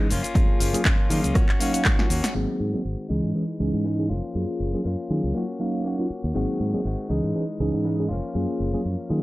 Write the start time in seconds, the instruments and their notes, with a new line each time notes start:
Already playing: fingered electric bass G#2, clean electric guitar D#4
0.09 fingered electric bass F#1, clean electric guitar F3 A#3 C#4 F4, open hi-hat, shaker
0.23 clean electric guitar A#3 C#4 F4, closed hi-hat, shaker
0.34 fingered electric bass F#2, clean electric guitar F3 A#3 C#4, tine electric piano A#3 C#4 F4 G#4, kick, closed hi-hat, shaker
0.59 fingered electric bass F#1, clean electric guitar F3 A#3 C#4 F4, open hi-hat, shaker
0.73 tine electric piano F#3 A#3 C#4 F4 G#4, muted fingered electric bass stroke, closed hi-hat, shaker
0.84 fingered electric bass F#2, clean electric guitar F3 F4, kick, clap, closed hi-hat, shaker
1.09 fingered electric bass D#3, clean electric guitar F3 A#3 C#4 F4, tine electric piano F#3 A#3 C#4 F4 G#4, open hi-hat, shaker
1.23 fingered electric bass C#2, clean electric guitar A#3 C#4 F4, closed hi-hat, shaker
1.34 tine electric piano F#3 A#3 C#4 D#4 F4, clean electric guitar A#3 C#4 F#4, kick, cross-stick, closed hi-hat, shaker
1.48 clean electric guitar C#4 F#4, clap
1.59 tine electric piano F#3 A#3 C#4 D#4 F5, clean electric guitar A#3 C#4 F#4, open hi-hat, shaker
1.73 clean electric guitar C#4 F#4, closed hi-hat, shaker
1.84 clean electric guitar A#3 C#4 F#4, kick, snare, clap, closed hi-hat, shaker
1.98 tine electric piano F#3 A#3 C#4 D#4 F4, snare
2.09 fingered electric bass D#2, clean electric guitar A#3 C#4 F#4, open hi-hat, shaker
2.23 clean electric guitar C#4 F#4, snare, closed hi-hat, shaker
2.34 fingered electric bass G#1, clean electric guitar D#3 G#3 C4 F#4, tine electric piano F#3 A#3 C4 D#4 G#4
2.60 fingered electric bass G#2
2.73 tine electric piano F#3 A#3 C4 D#4 G#4, muted fingered electric bass stroke
2.85 fingered electric bass G#1
3.09 fingered electric bass C#2, tine electric piano E3 G#3 C#4 D#4 G#4, clean electric guitar E3 G#3 D#4
3.24 fingered electric bass G#2
3.35 tine electric piano E3 G#3 C#4 D#4 G#4
3.60 fingered electric bass C#2, tine electric piano E3 G#3 C#4 D#4 G#4
3.74 fingered electric bass G#2
3.84 clean electric guitar E3 G#3 D#4
3.98 tine electric piano E3 G#3 C#4 D#4 G#4
4.09 fingered electric bass F#1, clean electric guitar F3 A#3 C#4 F4
4.35 fingered electric bass F#2, tine electric piano A#3 C#4 F4 G#4
4.60 fingered electric bass F#1
4.74 tine electric piano F#3 A#3 C#4 F4 G#4, muted fingered electric bass stroke
4.84 fingered electric bass F#2, clean electric guitar F3 A#3 C#4 F4
5.10 fingered electric bass D#3, tine electric piano F#3 A#3 C#4 F4 G#4
5.24 fingered electric bass C#2
5.34 tine electric piano F#3 A#3 C#4 D#4 F4, clean electric guitar A#3 C#4 F#4
5.59 tine electric piano F#3 A#3 C#4 D#4 F5
5.84 clean electric guitar A#3 C#4 F#4
5.98 tine electric piano F#3 A#3 C#4 D#4 F4
6.10 muted fingered electric bass stroke
6.24 fingered electric bass D#2
6.34 fingered electric bass G#1, clean electric guitar D#3 G#3 C4 F#4, tine electric piano F#3 A#3 C4 D#4 G#4
6.60 fingered electric bass G#2
6.73 tine electric piano F#3 A#3 C4 D#4 G#4, muted fingered electric bass stroke
6.84 fingered electric bass G#1, clean electric guitar D#3 G#3 C4 F#4
7.09 fingered electric bass C#2, tine electric piano E3 G#3 C#4 D#4 G#4, clean electric guitar E3 G#3 D#4
7.24 fingered electric bass G#2
7.35 tine electric piano E3 G#3 C#4 D#4 G#4
7.60 fingered electric bass C#2, tine electric piano E3 G#3 C#4 D#4 G#4
7.74 fingered electric bass G#2
7.84 clean electric guitar E3 G#3 D#4
7.99 tine electric piano E3 G#3 C#4 D#4 G#4
8.09 fingered electric bass F#1, clean electric guitar A#3 C#4 F4
8.14 clean electric guitar F3
8.35 fingered electric bass F#2, tine electric piano A#3 C#4 F4 G#4
8.60 fingered electric bass F#1
8.73 tine electric piano F#3 A#3 C#4 F4 G#4, muted fingered electric bass stroke
8.85 fingered electric bass F#2
9.09 fingered electric bass D#3, tine electric piano F#3 A#3 C#4 F4 G#4